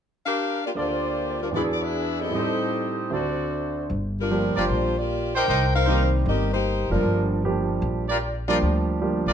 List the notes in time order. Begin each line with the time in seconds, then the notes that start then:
0.26 D4 G4 A#4 F5
0.66 A#3 F4 G4 D5
0.75 D2 D3 A#3 F4 G4 A4 C5 D5
0.79 A#3 F4 G4
1.42 G3 D4 F4 A#4
1.51 E2 E3 D4 E4 G#4 B4 D5
1.55 G#3 D4 E4 F#4 G#4 B4
1.73 D5
1.82 D4 G#4 B4 E5
2.20 C4 G4 A4 D#5
2.29 A2 G3
2.33 C4 D#4 G4 A4 C5 D#5
2.39 A4
3.10 D2 D3 C4 F#4 A4 C5 D5
3.90 G1
4.20 G3 D4 F4 A#4
4.30 F3 G3 A#3 D4 G4
4.56 F#1 A#3 F4 G4 A#4 C5 D5
4.69 A#1
4.98 A#3 F4 G4 D5
5.35 D#4 G4 A#4 C5 G5
5.48 C2 D#4 G4 A#4 C5
5.75 D#4 A#4 C5 F5
5.86 D#3 G3 A#3 C4 D#4 G4 A#4 C5
6.26 G1 C4 G4 A#4 D#5
6.53 A#3 D#4 G4 C5
6.90 F#1 F3 G3 A#3 D4 F4 A#4
7.03 G1
7.44 F3 G3 A#3 D4 G4
7.82 A#1
8.09 F4 G4 A#4 D5
8.48 F3 G3 A#3 D4 F4 G4 A#4 D5
8.62 D2
9.01 F3 G3 A#3 D4 G4
9.26 A1 F4 G4 A#4 D5